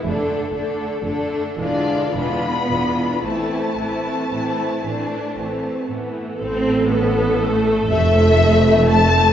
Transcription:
<<
  \new Staff \with { instrumentName = "Violin section" } { \time 6/8 \key a \minor \tempo 4. = 39 r4. d''8 b''4 | a''2~ a''8 r8 | r4. e''4 a''8 | }
  \new Staff \with { instrumentName = "Violin section" } { \time 6/8 \key a \minor <d' a'>8 <d' a'>8 <d' a'>8 <d' f'>8 <d' f'>8 <d' f'>8 | <c' e'>8 <c' e'>8 <c' e'>8 d'8 c'8 b8 | r4. e''4 a''8 | }
  \new Staff \with { instrumentName = "Viola section" } { \clef bass \time 6/8 \key a \minor << { a8 a8 a8 gis8 gis8 gis8 | a8 a8 a8 a8 a8 a8 | a'2. | } \\ { d8 d8 d8 e8 e8 e8 | e8 e8 e8 e8 e8 e8 | c'8 b8 a8 a4. | } >> }
  \new Staff \with { instrumentName = "Cello section" } { \clef bass \time 6/8 \key a \minor r4. d8 b4 | a2~ a8 r8 | a,4. f,4. | }
  \new Staff \with { instrumentName = "Double bass section" } { \clef bass \time 6/8 \key a \minor f,,8 f,,8 f,,8 e,,8 e,,8 e,,8 | a,,8 a,,8 a,,8 a,,8 a,,8 a,,8 | a,,4. f,,4. | }
>>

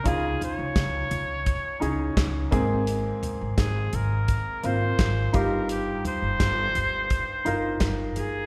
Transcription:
<<
  \new Staff \with { instrumentName = "Trumpet" } { \time 4/4 \key ees \mixolydian \tempo 4 = 85 aes'8 des''2. r8 | r4 aes'8 bes'4 c''4 bes'8 | g'8 c''2~ c''8 r8 aes'8 | }
  \new Staff \with { instrumentName = "Grand piano" } { \time 4/4 \key ees \mixolydian <des des' ees' f'>4. r4 <des' ees' aes'>4 <aes, bes c' aes'>8~ | <aes, bes c' aes'>4 r4. <bes c' f'>4 <g, ees' f' g'>8~ | <g, ees' f' g'>4 r4. <ees' f' bes'>4 r8 | }
  \new Staff \with { instrumentName = "Upright bass" } { \clef bass \time 4/4 \key ees \mixolydian des,8 r16 des,16 des,8 des,8. r16 des,8 des,8 aes,,8~ | aes,,8 r16 aes,,16 aes,,8 aes,,8. r16 aes,,8 aes,,8 g,,8~ | g,,8 r16 g,,16 g,,8 g,,8. r16 g,,8 g,,8 g,,8 | }
  \new DrumStaff \with { instrumentName = "Drums" } \drummode { \time 4/4 <hh bd>8 <hh tomfh>8 <hc hh bd sn>8 <hh tomfh>8 <hh bd>8 hh8 <hc hh bd sn>8 <hh bd tomfh>8 | hh8 <hh tomfh>8 <hc hh bd sn>8 <hh tomfh>8 <hh bd>8 hh8 <hc hh bd sn>8 <hh bd>8 | hh8 <hh tomfh>8 <hc hh bd sn>8 <hh tomfh>8 <hh bd>8 hh8 <hc hh bd sn>8 hh8 | }
>>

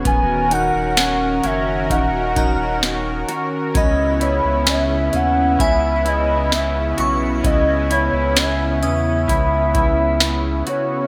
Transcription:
<<
  \new Staff \with { instrumentName = "Synth bell" } { \time 4/4 \key cis \dorian \tempo 4 = 65 r8 fis'''4. r8 ais''4. | b''4. r8 gis''4. cis'''8~ | cis'''4 r8 dis'''4. r4 | }
  \new Staff \with { instrumentName = "Soft synth lead" } { \time 4/4 \key cis \dorian gis''8 fis''4 e''8 fis''4. r8 | dis''8 cis''8 e''8 fis''8 e''8 dis''8 e''8. r16 | dis''8 cis''8 e''8 e''2 cis''8 | }
  \new Staff \with { instrumentName = "Clean electric guitar" } { \time 4/4 \key cis \dorian b8 dis'8 cis'8 cis'8 dis'8 dis'4 fis'8 | cis'8 e'8 cis'8 cis'8 e'8 e'4 fis'8 | cis'8 e'8 cis'8 cis'8 e'8 e'4 fis'8 | }
  \new Staff \with { instrumentName = "Analog synth pad" } { \time 4/4 \key cis \dorian <dis cis' fis' ais'>1 | <cis b cis' e'>1~ | <cis b cis' e'>1 | }
  \new Staff \with { instrumentName = "Sub bass" } { \clef bass \time 4/4 \key cis \dorian dis,,8. dis,,8. fis,,8 dis,,4. r8 | cis,8. cis,8. dis,8 cis,4. b,,8 | cis,8. cis,8. e,8 cis,4. r8 | }
  \new DrumStaff \with { instrumentName = "Drums" } \drummode { \time 4/4 <hh bd>8 hh8 <hh sn tamb>8 hh8 <hh bd>8 <hh bd>8 <hh sn tamb>8 hh8 | <hh bd>8 hh8 <hh sn tamb>8 hh8 <hh bd>8 hh8 <hh sn tamb>8 hh8 | <hh bd>8 hh8 <hh sn tamb>8 hh8 <hh bd>8 <hh bd>8 <hh sn tamb>8 hh8 | }
>>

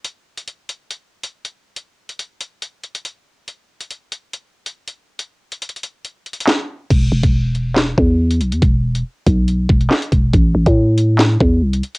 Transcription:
<<
  \new Staff \with { instrumentName = "808-style bass" } { \clef bass \time 4/4 \key a \dorian \tempo 4 = 140 r1 | r1 | r1 | r1 |
e,,8 e,,16 e,,4.~ e,,16 e,4 b,,16 e,16 | e,,4 r8 b,,4 e,,8 r8 e,,8 | a,,8 a,,16 a,4.~ a,16 e,8 c,8 r8 | }
  \new DrumStaff \with { instrumentName = "Drums" } \drummode { \time 4/4 hh8. hh16 hh8 hh8 hh8. hh16 r16 hh8. | hh8. hh16 hh8 hh8 hh8 hh16 hh16 hh4 | hh8. hh16 hh8 hh8 hh8. hh16 r16 hh8. | hh8. hh16 \tuplet 3/2 { hh16 hh16 hh16 hh16 r16 r16 hh16 r16 r16 hh16 hh16 hh16 } <hc hh sn>4 |
<cymc hh bd>8. <hh bd>16 r8 hh8 <hc sn>8 bd8 r16 hh16 hh16 hh16 | <hh bd>8. hh16 r8 <hh bd>8 hh8 bd16 hh16 <hc sn>16 hh16 <hh bd>8 | <hh bd>8. <hh bd>16 r8 hh8 <hc sn>8 bd8 r16 hh16 hh16 hh16 | }
>>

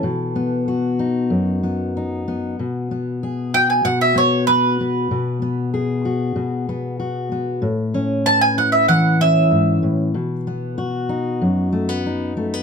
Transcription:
<<
  \new Staff \with { instrumentName = "Mandolin" } { \time 4/4 \key e \major \tempo 4 = 95 a'2 r2 | r4. g''16 gis''16 fis''16 e''16 cis''8 b'4~ | b'2 r2 | r4 a''16 gis''16 fis''16 e''16 fis''8 e''4 r8 |
r1 | }
  \new Staff \with { instrumentName = "Steel-string acoustic guitar" } { \time 4/4 \key e \major << { r8 b8 fis'8 dis'4 b8 dis'8 b8 | r8 b8 gis'8 fis'4 b8 fis'8 b8 | r8 b8 gis'8 fis'4 b8 fis'8 b8 | r8 cis'8 b'8 e'4 cis'4. |
r8 b8 fis'8 dis'4 a16 b16 dis'8 a16 b16 | } \\ { b,2 fis,2 | b,2 b,2 | b,2 b,2 | a,2 e4 gis,8 a,8 |
b,2 fis,2 | } >> }
>>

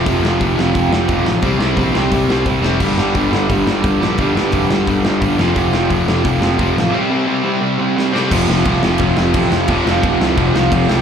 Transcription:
<<
  \new Staff \with { instrumentName = "Overdriven electric guitar" } { \clef bass \time 4/4 \key f \mixolydian \tempo 4 = 174 <f, c f>2. <f, c f>8 r8 | <c g c'>2.~ <c g c'>8 <c g c'>8 | <g, d g>2.~ <g, d g>8 <g, d g>8 | <g, d g>2.~ <g, d g>8 <f, c f>8~ |
<f, c f>2. <f, c f>8 r8 | <c g c'>2.~ <c g c'>8 <c g c'>8 | <f, c f>1 | <f, c f>1 | }
  \new Staff \with { instrumentName = "Distorted electric guitar" } { \clef bass \time 4/4 \key f \mixolydian <f, c f>8 <f, c f>8 <f, c f>8 <f, c f>8 <f, c f>8 <f, c f>8 <f, c f>8 <f, c f>8 | <c g c'>8 <c g c'>8 <c g c'>8 <c g c'>8 <c g c'>8 <c g c'>8 <c g c'>8 <c g c'>8 | <g, d g>8 <g, d g>8 <g, d g>8 <g, d g>8 <g, d g>8 <g, d g>8 <g, d g>8 <g, d g>8 | <g, d g>8 <g, d g>8 <g, d g>8 <g, d g>8 <g, d g>8 <g, d g>8 <g, d g>8 <f, c f>8 |
<f, c f>8 <f, c f>8 <f, c f>8 <f, c f>8 <f, c f>8 <f, c f>8 <f, c f>8 <f, c f>8 | <c g c'>8 <c g c'>8 <c g c'>8 <c g c'>8 <c g c'>8 <c g c'>8 <c g c'>8 <c g c'>8 | <f, c f>8 <f, c f>8 <f, c f>8 <f, c f>8 <f, c f>8 <f, c f>8 <f, c f>8 <f, c f>8 | <f, c f>8 <f, c f>8 <f, c f>8 <f, c f>8 <f, c f>8 <f, c f>8 <f, c f>8 <f, c f>8 | }
  \new Staff \with { instrumentName = "Overdriven electric guitar" } { \clef bass \time 4/4 \key f \mixolydian <f, c f>8 <f, c f>8 <f, c f>8 <f, c f>8 <f, c f>8 <f, c f>8 <f, c f>8 <f, c f>8 | <c g c'>8 <c g c'>8 <c g c'>8 <c g c'>8 <c g c'>8 <c g c'>8 <c g c'>8 <c g c'>8 | <g, d g>8 <g, d g>8 <g, d g>8 <g, d g>8 <g, d g>8 <g, d g>8 <g, d g>8 <g, d g>8 | <g, d g>8 <g, d g>8 <g, d g>8 <g, d g>8 <g, d g>8 <g, d g>8 <g, d g>8 <f, c f>8 |
<f, c f>8 <f, c f>8 <f, c f>8 <f, c f>8 <f, c f>8 <f, c f>8 <f, c f>8 <f, c f>8 | <c g c'>8 <c g c'>8 <c g c'>8 <c g c'>8 <c g c'>8 <c g c'>8 <c g c'>8 <c g c'>8 | <f, c f>8 <f, c f>8 <f, c f>8 <f, c f>8 <f, c f>8 <f, c f>8 <f, c f>8 <f, c f>8 | <f, c f>8 <f, c f>8 <f, c f>8 <f, c f>8 <f, c f>8 <f, c f>8 <f, c f>8 <f, c f>8 | }
  \new Staff \with { instrumentName = "Picked electric bass" } { \clef bass \time 4/4 \key f \mixolydian f,,8 f,,8 f,,8 f,,8 f,,8 f,,8 f,,8 a,,8 | c,8 c,8 bes,,8 c,8 c,8 c,8 c,8 f,,8 | g,,8 g,,8 g,,8 g,,8 g,,8 g,,8 g,,8 bes,,8 | g,,8 g,,8 f,,8 g,,8 g,,8 g,,8 g,,8 f,,8 |
f,,8 f,,8 f,,8 f,,8 f,,8 f,,8 f,,8 a,,8 | r1 | f,,8 f,,8 c,8 f,,8 f,,8 f,,8 a,,8 f,8 | f,,8 f,,8 f,,8 c,8 f,,8 c,8 f,,8 c,8 | }
  \new DrumStaff \with { instrumentName = "Drums" } \drummode { \time 4/4 <hho bd>8 sn8 <hho bd>8 sn8 <hho bd>8 sn8 <hho bd>8 sn8 | <hho bd>8 sn8 <hho bd>8 sn8 <hho bd>8 sn8 <hho bd>8 sn8 | <cymc bd>8 sn8 <hho bd>8 sn8 <hho bd>8 sn8 <hho bd>8 sn8 | <hho bd>8 sn8 <hho bd>8 sn8 <hho bd>8 sn8 <hho bd>8 sn8 |
<hho bd>8 sn8 <hho bd>8 sn8 <hho bd>8 sn8 <hho bd>8 sn8 | r4 r4 r4 sn8 sn8 | <cymc bd>8 sn8 <cymc bd>8 sn8 <cymc bd>8 sn8 <cymc bd>8 sn8 | <cymc bd>8 sn8 <cymc bd>8 sn8 <cymc bd>8 sn8 <cymc bd>8 sn8 | }
>>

